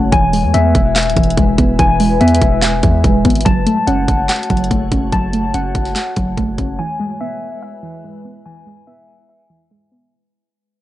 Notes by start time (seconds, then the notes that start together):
Already playing: F#1 F#3 A3 C#4 F#5 A5
0.12 E1 E3 G#3 E4 B4 G#5, kick, closed hi-hat
0.33 G#3, open hi-hat
0.44 E2
0.54 E2 B3 E5, closed hi-hat
0.75 E1, kick, closed hi-hat
0.96 E5, snare, clap, closed hi-hat
1.03 D1, closed hi-hat
1.10 closed hi-hat
1.16 E1 E3, kick, closed hi-hat
1.23 closed hi-hat
1.30 closed hi-hat
1.37 E1 G#3, kick, closed hi-hat
1.58 E1 B3, kick, closed hi-hat
1.79 E1 E3 G#5, kick, closed hi-hat
2.00 G#3, open hi-hat
2.21 E2 B3 E5, closed hi-hat
2.28 closed hi-hat
2.35 closed hi-hat
2.42 E1, kick, closed hi-hat
2.62 E5, snare, clap, closed hi-hat
2.83 E2 E3, kick, closed hi-hat
3.04 E1 G#3, kick, closed hi-hat
3.25 G#1 B3, kick, closed hi-hat
3.30 closed hi-hat
3.35 closed hi-hat
3.41 closed hi-hat
3.45 F#1 F#3 A3 F#4 C#5 A5, kick, closed hi-hat
3.66 A3, closed hi-hat
3.87 F#1 C#4 F#5, closed hi-hat
4.08 F#1, kick, closed hi-hat
4.29 F#5, snare, clap, closed hi-hat
4.36 closed hi-hat
4.43 closed hi-hat
4.50 F#1 F#3, kick, closed hi-hat
4.57 closed hi-hat
4.64 closed hi-hat
4.71 F#1 A3, kick, closed hi-hat
4.92 F#1 C#4, kick, closed hi-hat
5.12 F#1 F#3 A5, kick, closed hi-hat
5.33 A3, closed hi-hat
5.54 F#1 C#4 F#5, closed hi-hat
5.75 F#1, kick, closed hi-hat
5.85 snare
5.96 F#5, snare, clap, closed hi-hat
6.16 F#1 F#3, kick, closed hi-hat
6.37 F#1 A3, kick, closed hi-hat
6.58 F#1 C#4, kick, closed hi-hat
6.79 E3 G#3 E4 B4 G#5
7.00 G#3
7.21 B3 E5
7.63 E5
7.83 E3
8.04 G#3
8.25 B3
8.46 E3 G#5
8.67 G#3
8.87 B3 E5
9.29 E5
9.50 E3
9.71 G#3
9.92 B3